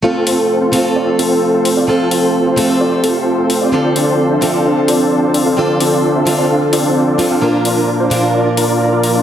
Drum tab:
HH |-o-o-o-o|-o-o-o-o|-o-o-o-o|-o-o-o-o|

HH |-o-o-o-o|